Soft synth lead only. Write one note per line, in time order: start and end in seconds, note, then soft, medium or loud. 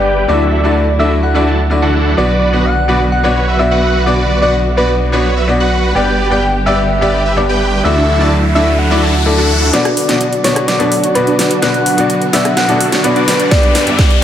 0.00 0.28 D5 loud
0.28 1.01 D5 loud
0.99 1.25 E5 medium
1.23 1.94 F#5 medium
2.18 2.66 D5 loud
2.65 3.12 F#5 loud
3.12 3.61 F#5 loud
3.59 4.06 E5 loud
4.07 4.40 D5 loud
4.42 4.79 D5 loud
4.77 5.48 B4 medium
5.95 6.68 G5 loud
6.66 7.39 E5 loud
7.37 7.84 D5 medium
7.84 8.51 E5 loud
8.55 8.80 E5 medium
8.79 9.26 F#5 medium
9.26 9.70 A4 loud
9.73 10.46 D5 loud
10.44 10.67 C#5 loud
10.68 11.17 D5 loud
11.15 11.64 B4 loud
11.62 12.35 F#5 loud
12.33 12.56 E5 loud
12.57 13.01 F#5 loud
13.04 13.53 B4 loud
13.51 14.24 D5 loud